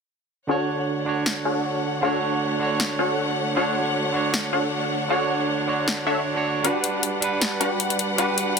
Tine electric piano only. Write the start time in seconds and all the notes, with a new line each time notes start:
0.47 D3 D4 F#4 C#5
1.05 D3 D4 F#4 C#5
2.01 D3 D4 F#4 C#5
2.59 D3 D4 F#4
2.63 C#5
3.55 D3 D4 F#4 C#5
4.12 D3 D4 F#4
4.16 C#5
5.08 D3 D4 F#4
5.12 C#5
5.67 D3 D4 F#4 C#5
6.06 D3 D4 F#4 C#5
6.35 D3 D4 F#4 C#5
6.62 G3 D4 B4 F#5
7.20 G3 D4 B4 F#5
8.16 G3 D4 B4 F#5